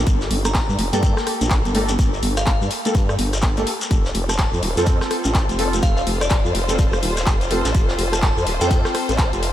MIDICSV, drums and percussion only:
0, 0, Header, 1, 3, 480
1, 0, Start_track
1, 0, Tempo, 480000
1, 68, Time_signature, 4, 2, 24, 8
1, 9527, End_track
2, 0, Start_track
2, 0, Title_t, "Shekere"
2, 70, Note_on_c, 9, 82, 67
2, 170, Note_off_c, 9, 82, 0
2, 210, Note_on_c, 9, 82, 41
2, 310, Note_off_c, 9, 82, 0
2, 450, Note_on_c, 9, 82, 84
2, 550, Note_off_c, 9, 82, 0
2, 553, Note_on_c, 9, 82, 63
2, 653, Note_off_c, 9, 82, 0
2, 694, Note_on_c, 9, 82, 41
2, 794, Note_off_c, 9, 82, 0
2, 934, Note_on_c, 9, 82, 81
2, 1034, Note_off_c, 9, 82, 0
2, 1034, Note_on_c, 9, 82, 69
2, 1134, Note_off_c, 9, 82, 0
2, 1174, Note_on_c, 9, 82, 36
2, 1275, Note_off_c, 9, 82, 0
2, 1415, Note_on_c, 9, 82, 73
2, 1513, Note_off_c, 9, 82, 0
2, 1513, Note_on_c, 9, 82, 63
2, 1613, Note_off_c, 9, 82, 0
2, 1655, Note_on_c, 9, 82, 38
2, 1755, Note_off_c, 9, 82, 0
2, 1882, Note_on_c, 9, 82, 80
2, 1983, Note_off_c, 9, 82, 0
2, 1991, Note_on_c, 9, 82, 63
2, 2091, Note_off_c, 9, 82, 0
2, 2136, Note_on_c, 9, 82, 35
2, 2236, Note_off_c, 9, 82, 0
2, 2368, Note_on_c, 9, 82, 73
2, 2468, Note_off_c, 9, 82, 0
2, 2468, Note_on_c, 9, 82, 65
2, 2568, Note_off_c, 9, 82, 0
2, 2617, Note_on_c, 9, 82, 41
2, 2717, Note_off_c, 9, 82, 0
2, 2858, Note_on_c, 9, 82, 75
2, 2946, Note_off_c, 9, 82, 0
2, 2946, Note_on_c, 9, 82, 61
2, 3046, Note_off_c, 9, 82, 0
2, 3096, Note_on_c, 9, 82, 35
2, 3196, Note_off_c, 9, 82, 0
2, 3334, Note_on_c, 9, 82, 71
2, 3419, Note_off_c, 9, 82, 0
2, 3419, Note_on_c, 9, 82, 61
2, 3519, Note_off_c, 9, 82, 0
2, 3567, Note_on_c, 9, 82, 42
2, 3667, Note_off_c, 9, 82, 0
2, 3813, Note_on_c, 9, 82, 83
2, 3913, Note_off_c, 9, 82, 0
2, 3913, Note_on_c, 9, 82, 55
2, 4013, Note_off_c, 9, 82, 0
2, 4054, Note_on_c, 9, 82, 40
2, 4154, Note_off_c, 9, 82, 0
2, 4295, Note_on_c, 9, 82, 84
2, 4395, Note_off_c, 9, 82, 0
2, 4534, Note_on_c, 9, 82, 38
2, 4634, Note_off_c, 9, 82, 0
2, 4773, Note_on_c, 9, 82, 85
2, 4863, Note_off_c, 9, 82, 0
2, 4863, Note_on_c, 9, 82, 59
2, 4963, Note_off_c, 9, 82, 0
2, 5018, Note_on_c, 9, 82, 35
2, 5118, Note_off_c, 9, 82, 0
2, 5241, Note_on_c, 9, 82, 69
2, 5341, Note_off_c, 9, 82, 0
2, 5356, Note_on_c, 9, 82, 58
2, 5456, Note_off_c, 9, 82, 0
2, 5502, Note_on_c, 9, 82, 38
2, 5602, Note_off_c, 9, 82, 0
2, 5742, Note_on_c, 9, 82, 72
2, 5826, Note_off_c, 9, 82, 0
2, 5826, Note_on_c, 9, 82, 57
2, 5926, Note_off_c, 9, 82, 0
2, 5969, Note_on_c, 9, 82, 38
2, 6069, Note_off_c, 9, 82, 0
2, 6215, Note_on_c, 9, 82, 72
2, 6297, Note_off_c, 9, 82, 0
2, 6297, Note_on_c, 9, 82, 57
2, 6397, Note_off_c, 9, 82, 0
2, 6454, Note_on_c, 9, 82, 34
2, 6554, Note_off_c, 9, 82, 0
2, 6689, Note_on_c, 9, 82, 76
2, 6784, Note_off_c, 9, 82, 0
2, 6784, Note_on_c, 9, 82, 65
2, 6884, Note_off_c, 9, 82, 0
2, 6929, Note_on_c, 9, 82, 38
2, 7029, Note_off_c, 9, 82, 0
2, 7169, Note_on_c, 9, 82, 71
2, 7269, Note_off_c, 9, 82, 0
2, 7270, Note_on_c, 9, 82, 63
2, 7370, Note_off_c, 9, 82, 0
2, 7420, Note_on_c, 9, 82, 36
2, 7520, Note_off_c, 9, 82, 0
2, 7651, Note_on_c, 9, 82, 75
2, 7750, Note_off_c, 9, 82, 0
2, 7750, Note_on_c, 9, 82, 63
2, 7850, Note_off_c, 9, 82, 0
2, 7891, Note_on_c, 9, 82, 34
2, 7991, Note_off_c, 9, 82, 0
2, 8137, Note_on_c, 9, 82, 75
2, 8226, Note_off_c, 9, 82, 0
2, 8226, Note_on_c, 9, 82, 55
2, 8326, Note_off_c, 9, 82, 0
2, 8375, Note_on_c, 9, 82, 38
2, 8475, Note_off_c, 9, 82, 0
2, 8609, Note_on_c, 9, 82, 78
2, 8705, Note_off_c, 9, 82, 0
2, 8705, Note_on_c, 9, 82, 60
2, 8805, Note_off_c, 9, 82, 0
2, 8855, Note_on_c, 9, 82, 38
2, 8955, Note_off_c, 9, 82, 0
2, 9097, Note_on_c, 9, 82, 69
2, 9186, Note_off_c, 9, 82, 0
2, 9186, Note_on_c, 9, 82, 57
2, 9286, Note_off_c, 9, 82, 0
2, 9334, Note_on_c, 9, 82, 36
2, 9434, Note_off_c, 9, 82, 0
2, 9527, End_track
3, 0, Start_track
3, 0, Title_t, "Drums"
3, 63, Note_on_c, 9, 42, 78
3, 67, Note_off_c, 9, 42, 0
3, 67, Note_on_c, 9, 42, 61
3, 68, Note_on_c, 9, 36, 116
3, 167, Note_off_c, 9, 42, 0
3, 168, Note_off_c, 9, 36, 0
3, 216, Note_on_c, 9, 38, 51
3, 306, Note_on_c, 9, 46, 101
3, 307, Note_on_c, 9, 42, 63
3, 316, Note_off_c, 9, 38, 0
3, 406, Note_off_c, 9, 46, 0
3, 407, Note_off_c, 9, 42, 0
3, 451, Note_on_c, 9, 37, 73
3, 451, Note_on_c, 9, 42, 49
3, 544, Note_on_c, 9, 39, 121
3, 547, Note_off_c, 9, 42, 0
3, 547, Note_on_c, 9, 42, 63
3, 548, Note_on_c, 9, 36, 120
3, 550, Note_on_c, 9, 38, 127
3, 551, Note_off_c, 9, 37, 0
3, 556, Note_off_c, 9, 42, 0
3, 556, Note_on_c, 9, 42, 79
3, 644, Note_off_c, 9, 39, 0
3, 648, Note_off_c, 9, 36, 0
3, 650, Note_off_c, 9, 38, 0
3, 656, Note_off_c, 9, 42, 0
3, 787, Note_on_c, 9, 46, 109
3, 790, Note_on_c, 9, 42, 67
3, 887, Note_off_c, 9, 46, 0
3, 890, Note_off_c, 9, 42, 0
3, 931, Note_on_c, 9, 42, 50
3, 1027, Note_off_c, 9, 42, 0
3, 1027, Note_on_c, 9, 42, 58
3, 1028, Note_off_c, 9, 42, 0
3, 1028, Note_on_c, 9, 36, 120
3, 1028, Note_on_c, 9, 42, 86
3, 1128, Note_off_c, 9, 36, 0
3, 1128, Note_off_c, 9, 42, 0
3, 1171, Note_on_c, 9, 37, 72
3, 1178, Note_on_c, 9, 38, 55
3, 1267, Note_off_c, 9, 37, 0
3, 1267, Note_on_c, 9, 37, 58
3, 1267, Note_on_c, 9, 46, 103
3, 1270, Note_on_c, 9, 42, 62
3, 1279, Note_off_c, 9, 38, 0
3, 1367, Note_off_c, 9, 37, 0
3, 1367, Note_off_c, 9, 46, 0
3, 1370, Note_off_c, 9, 42, 0
3, 1412, Note_on_c, 9, 42, 46
3, 1504, Note_off_c, 9, 42, 0
3, 1504, Note_on_c, 9, 42, 81
3, 1505, Note_on_c, 9, 39, 113
3, 1508, Note_off_c, 9, 42, 0
3, 1508, Note_on_c, 9, 36, 119
3, 1508, Note_on_c, 9, 42, 60
3, 1509, Note_on_c, 9, 38, 105
3, 1605, Note_off_c, 9, 39, 0
3, 1608, Note_off_c, 9, 36, 0
3, 1608, Note_off_c, 9, 42, 0
3, 1609, Note_off_c, 9, 38, 0
3, 1653, Note_on_c, 9, 42, 36
3, 1747, Note_on_c, 9, 46, 106
3, 1751, Note_off_c, 9, 42, 0
3, 1751, Note_on_c, 9, 42, 64
3, 1847, Note_off_c, 9, 46, 0
3, 1851, Note_off_c, 9, 42, 0
3, 1892, Note_on_c, 9, 42, 49
3, 1988, Note_off_c, 9, 42, 0
3, 1988, Note_on_c, 9, 36, 113
3, 1988, Note_on_c, 9, 42, 60
3, 1996, Note_off_c, 9, 42, 0
3, 1996, Note_on_c, 9, 42, 84
3, 2088, Note_off_c, 9, 36, 0
3, 2096, Note_off_c, 9, 42, 0
3, 2133, Note_on_c, 9, 42, 39
3, 2224, Note_off_c, 9, 42, 0
3, 2224, Note_on_c, 9, 42, 69
3, 2227, Note_on_c, 9, 46, 104
3, 2324, Note_off_c, 9, 42, 0
3, 2327, Note_off_c, 9, 46, 0
3, 2372, Note_on_c, 9, 37, 75
3, 2372, Note_on_c, 9, 42, 49
3, 2464, Note_on_c, 9, 39, 113
3, 2465, Note_on_c, 9, 38, 110
3, 2468, Note_off_c, 9, 42, 0
3, 2468, Note_on_c, 9, 36, 116
3, 2468, Note_on_c, 9, 42, 81
3, 2472, Note_off_c, 9, 37, 0
3, 2564, Note_off_c, 9, 39, 0
3, 2565, Note_off_c, 9, 38, 0
3, 2568, Note_off_c, 9, 36, 0
3, 2568, Note_off_c, 9, 42, 0
3, 2706, Note_on_c, 9, 42, 72
3, 2707, Note_on_c, 9, 46, 104
3, 2806, Note_off_c, 9, 42, 0
3, 2807, Note_off_c, 9, 46, 0
3, 2852, Note_on_c, 9, 42, 50
3, 2948, Note_off_c, 9, 42, 0
3, 2948, Note_on_c, 9, 36, 116
3, 2948, Note_on_c, 9, 42, 63
3, 2954, Note_off_c, 9, 42, 0
3, 2954, Note_on_c, 9, 42, 83
3, 3048, Note_off_c, 9, 36, 0
3, 3054, Note_off_c, 9, 42, 0
3, 3092, Note_on_c, 9, 37, 75
3, 3187, Note_on_c, 9, 46, 104
3, 3192, Note_off_c, 9, 37, 0
3, 3192, Note_on_c, 9, 42, 70
3, 3287, Note_off_c, 9, 46, 0
3, 3292, Note_off_c, 9, 42, 0
3, 3332, Note_on_c, 9, 37, 52
3, 3332, Note_on_c, 9, 42, 44
3, 3335, Note_on_c, 9, 38, 39
3, 3425, Note_on_c, 9, 39, 105
3, 3427, Note_off_c, 9, 38, 0
3, 3427, Note_on_c, 9, 38, 102
3, 3428, Note_off_c, 9, 42, 0
3, 3428, Note_on_c, 9, 36, 122
3, 3428, Note_on_c, 9, 42, 58
3, 3429, Note_off_c, 9, 42, 0
3, 3429, Note_on_c, 9, 42, 76
3, 3432, Note_off_c, 9, 37, 0
3, 3525, Note_off_c, 9, 39, 0
3, 3527, Note_off_c, 9, 38, 0
3, 3528, Note_off_c, 9, 36, 0
3, 3529, Note_off_c, 9, 42, 0
3, 3573, Note_on_c, 9, 42, 37
3, 3578, Note_off_c, 9, 42, 0
3, 3578, Note_on_c, 9, 42, 45
3, 3664, Note_off_c, 9, 42, 0
3, 3664, Note_on_c, 9, 42, 66
3, 3668, Note_on_c, 9, 46, 109
3, 3764, Note_off_c, 9, 42, 0
3, 3768, Note_off_c, 9, 46, 0
3, 3809, Note_on_c, 9, 38, 48
3, 3812, Note_on_c, 9, 42, 47
3, 3908, Note_off_c, 9, 42, 0
3, 3908, Note_on_c, 9, 36, 109
3, 3908, Note_on_c, 9, 42, 65
3, 3909, Note_off_c, 9, 38, 0
3, 4008, Note_off_c, 9, 36, 0
3, 4008, Note_off_c, 9, 42, 0
3, 4055, Note_on_c, 9, 38, 50
3, 4142, Note_on_c, 9, 42, 67
3, 4148, Note_on_c, 9, 46, 101
3, 4155, Note_off_c, 9, 38, 0
3, 4242, Note_off_c, 9, 42, 0
3, 4248, Note_off_c, 9, 46, 0
3, 4293, Note_on_c, 9, 37, 78
3, 4293, Note_on_c, 9, 42, 49
3, 4385, Note_off_c, 9, 42, 0
3, 4385, Note_on_c, 9, 39, 110
3, 4385, Note_on_c, 9, 42, 88
3, 4388, Note_off_c, 9, 42, 0
3, 4388, Note_on_c, 9, 36, 111
3, 4388, Note_on_c, 9, 38, 104
3, 4388, Note_on_c, 9, 42, 64
3, 4393, Note_off_c, 9, 37, 0
3, 4485, Note_off_c, 9, 39, 0
3, 4488, Note_off_c, 9, 36, 0
3, 4488, Note_off_c, 9, 38, 0
3, 4488, Note_off_c, 9, 42, 0
3, 4627, Note_on_c, 9, 46, 102
3, 4632, Note_on_c, 9, 42, 65
3, 4727, Note_off_c, 9, 46, 0
3, 4732, Note_off_c, 9, 42, 0
3, 4772, Note_on_c, 9, 42, 51
3, 4860, Note_off_c, 9, 42, 0
3, 4860, Note_on_c, 9, 42, 84
3, 4868, Note_off_c, 9, 42, 0
3, 4868, Note_on_c, 9, 36, 108
3, 4868, Note_on_c, 9, 42, 61
3, 4967, Note_off_c, 9, 42, 0
3, 4968, Note_off_c, 9, 36, 0
3, 5008, Note_on_c, 9, 38, 50
3, 5013, Note_on_c, 9, 37, 73
3, 5108, Note_off_c, 9, 37, 0
3, 5108, Note_off_c, 9, 38, 0
3, 5108, Note_on_c, 9, 37, 64
3, 5108, Note_on_c, 9, 46, 103
3, 5111, Note_on_c, 9, 42, 60
3, 5208, Note_off_c, 9, 37, 0
3, 5208, Note_off_c, 9, 46, 0
3, 5211, Note_off_c, 9, 42, 0
3, 5253, Note_on_c, 9, 42, 48
3, 5258, Note_off_c, 9, 42, 0
3, 5258, Note_on_c, 9, 42, 42
3, 5345, Note_off_c, 9, 42, 0
3, 5345, Note_on_c, 9, 39, 107
3, 5345, Note_on_c, 9, 42, 82
3, 5346, Note_on_c, 9, 38, 99
3, 5348, Note_off_c, 9, 42, 0
3, 5348, Note_on_c, 9, 36, 118
3, 5348, Note_on_c, 9, 42, 61
3, 5445, Note_off_c, 9, 39, 0
3, 5446, Note_off_c, 9, 38, 0
3, 5448, Note_off_c, 9, 36, 0
3, 5448, Note_off_c, 9, 42, 0
3, 5493, Note_on_c, 9, 42, 36
3, 5588, Note_on_c, 9, 46, 105
3, 5592, Note_off_c, 9, 42, 0
3, 5592, Note_on_c, 9, 42, 70
3, 5688, Note_off_c, 9, 46, 0
3, 5692, Note_off_c, 9, 42, 0
3, 5733, Note_on_c, 9, 42, 47
3, 5824, Note_off_c, 9, 42, 0
3, 5824, Note_on_c, 9, 42, 77
3, 5828, Note_off_c, 9, 42, 0
3, 5828, Note_on_c, 9, 36, 107
3, 5828, Note_on_c, 9, 42, 64
3, 5928, Note_off_c, 9, 36, 0
3, 5928, Note_off_c, 9, 42, 0
3, 5968, Note_on_c, 9, 42, 41
3, 6068, Note_off_c, 9, 42, 0
3, 6068, Note_on_c, 9, 42, 61
3, 6068, Note_on_c, 9, 46, 100
3, 6168, Note_off_c, 9, 42, 0
3, 6168, Note_off_c, 9, 46, 0
3, 6213, Note_on_c, 9, 37, 76
3, 6213, Note_on_c, 9, 42, 50
3, 6305, Note_on_c, 9, 39, 110
3, 6308, Note_off_c, 9, 42, 0
3, 6308, Note_on_c, 9, 36, 114
3, 6308, Note_on_c, 9, 42, 68
3, 6311, Note_off_c, 9, 42, 0
3, 6311, Note_on_c, 9, 42, 93
3, 6313, Note_off_c, 9, 37, 0
3, 6313, Note_on_c, 9, 38, 101
3, 6405, Note_off_c, 9, 39, 0
3, 6408, Note_off_c, 9, 36, 0
3, 6411, Note_off_c, 9, 42, 0
3, 6413, Note_off_c, 9, 38, 0
3, 6548, Note_on_c, 9, 46, 100
3, 6556, Note_on_c, 9, 42, 64
3, 6648, Note_off_c, 9, 46, 0
3, 6656, Note_off_c, 9, 42, 0
3, 6693, Note_on_c, 9, 42, 53
3, 6788, Note_off_c, 9, 42, 0
3, 6788, Note_on_c, 9, 36, 101
3, 6788, Note_on_c, 9, 42, 65
3, 6792, Note_off_c, 9, 42, 0
3, 6792, Note_on_c, 9, 42, 90
3, 6888, Note_off_c, 9, 36, 0
3, 6892, Note_off_c, 9, 42, 0
3, 6932, Note_on_c, 9, 37, 75
3, 7028, Note_on_c, 9, 46, 104
3, 7030, Note_on_c, 9, 42, 66
3, 7032, Note_off_c, 9, 37, 0
3, 7128, Note_off_c, 9, 46, 0
3, 7130, Note_off_c, 9, 42, 0
3, 7172, Note_on_c, 9, 37, 58
3, 7172, Note_on_c, 9, 42, 50
3, 7176, Note_on_c, 9, 38, 43
3, 7264, Note_on_c, 9, 39, 114
3, 7267, Note_off_c, 9, 38, 0
3, 7267, Note_off_c, 9, 42, 0
3, 7267, Note_on_c, 9, 38, 118
3, 7267, Note_on_c, 9, 42, 65
3, 7268, Note_on_c, 9, 36, 117
3, 7270, Note_off_c, 9, 42, 0
3, 7270, Note_on_c, 9, 42, 78
3, 7272, Note_off_c, 9, 37, 0
3, 7364, Note_off_c, 9, 39, 0
3, 7367, Note_off_c, 9, 38, 0
3, 7368, Note_off_c, 9, 36, 0
3, 7370, Note_off_c, 9, 42, 0
3, 7410, Note_on_c, 9, 42, 40
3, 7412, Note_off_c, 9, 42, 0
3, 7412, Note_on_c, 9, 42, 36
3, 7507, Note_on_c, 9, 46, 98
3, 7510, Note_off_c, 9, 42, 0
3, 7510, Note_on_c, 9, 42, 67
3, 7607, Note_off_c, 9, 46, 0
3, 7610, Note_off_c, 9, 42, 0
3, 7647, Note_on_c, 9, 38, 56
3, 7652, Note_on_c, 9, 42, 50
3, 7746, Note_off_c, 9, 42, 0
3, 7746, Note_on_c, 9, 42, 69
3, 7747, Note_off_c, 9, 38, 0
3, 7747, Note_on_c, 9, 36, 103
3, 7753, Note_off_c, 9, 42, 0
3, 7753, Note_on_c, 9, 42, 83
3, 7847, Note_off_c, 9, 36, 0
3, 7853, Note_off_c, 9, 42, 0
3, 7886, Note_on_c, 9, 38, 53
3, 7986, Note_off_c, 9, 38, 0
3, 7986, Note_on_c, 9, 46, 94
3, 7992, Note_on_c, 9, 42, 58
3, 8086, Note_off_c, 9, 46, 0
3, 8092, Note_off_c, 9, 42, 0
3, 8131, Note_on_c, 9, 37, 78
3, 8131, Note_on_c, 9, 42, 53
3, 8224, Note_on_c, 9, 39, 114
3, 8225, Note_off_c, 9, 42, 0
3, 8225, Note_on_c, 9, 42, 85
3, 8226, Note_off_c, 9, 42, 0
3, 8226, Note_on_c, 9, 42, 68
3, 8227, Note_on_c, 9, 36, 110
3, 8227, Note_on_c, 9, 38, 112
3, 8231, Note_off_c, 9, 37, 0
3, 8324, Note_off_c, 9, 39, 0
3, 8326, Note_off_c, 9, 42, 0
3, 8327, Note_off_c, 9, 36, 0
3, 8327, Note_off_c, 9, 38, 0
3, 8467, Note_on_c, 9, 46, 94
3, 8476, Note_on_c, 9, 42, 71
3, 8567, Note_off_c, 9, 46, 0
3, 8576, Note_off_c, 9, 42, 0
3, 8611, Note_on_c, 9, 42, 54
3, 8706, Note_off_c, 9, 42, 0
3, 8706, Note_on_c, 9, 42, 87
3, 8707, Note_off_c, 9, 42, 0
3, 8707, Note_on_c, 9, 36, 106
3, 8707, Note_on_c, 9, 42, 66
3, 8807, Note_off_c, 9, 36, 0
3, 8807, Note_off_c, 9, 42, 0
3, 8851, Note_on_c, 9, 37, 82
3, 8855, Note_on_c, 9, 38, 55
3, 8946, Note_off_c, 9, 37, 0
3, 8946, Note_on_c, 9, 37, 68
3, 8946, Note_on_c, 9, 46, 101
3, 8955, Note_off_c, 9, 38, 0
3, 8961, Note_on_c, 9, 42, 71
3, 9046, Note_off_c, 9, 37, 0
3, 9046, Note_off_c, 9, 46, 0
3, 9061, Note_off_c, 9, 42, 0
3, 9090, Note_on_c, 9, 42, 43
3, 9092, Note_off_c, 9, 42, 0
3, 9092, Note_on_c, 9, 42, 53
3, 9180, Note_off_c, 9, 42, 0
3, 9180, Note_on_c, 9, 42, 78
3, 9184, Note_on_c, 9, 39, 113
3, 9187, Note_off_c, 9, 42, 0
3, 9187, Note_on_c, 9, 36, 116
3, 9187, Note_on_c, 9, 42, 66
3, 9190, Note_on_c, 9, 38, 98
3, 9284, Note_off_c, 9, 39, 0
3, 9287, Note_off_c, 9, 36, 0
3, 9287, Note_off_c, 9, 42, 0
3, 9290, Note_off_c, 9, 38, 0
3, 9332, Note_on_c, 9, 42, 39
3, 9427, Note_on_c, 9, 46, 99
3, 9430, Note_off_c, 9, 42, 0
3, 9430, Note_on_c, 9, 42, 62
3, 9527, Note_off_c, 9, 42, 0
3, 9527, Note_off_c, 9, 46, 0
3, 9527, End_track
0, 0, End_of_file